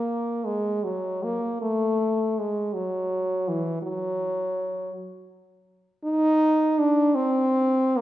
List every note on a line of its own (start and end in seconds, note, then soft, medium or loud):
0.00 0.47 A#3 medium
0.45 0.85 G#3 medium
0.84 1.25 F#3 medium
1.23 1.61 A#3 medium
1.61 2.40 A3 medium
2.39 2.75 G#3 medium
2.74 3.50 F#3 medium
3.48 3.82 E3 medium
3.83 4.92 F#3 medium
6.04 6.80 D#4 medium
6.79 7.16 D4 medium
7.15 7.98 C4 medium
7.97 8.01 A#3 medium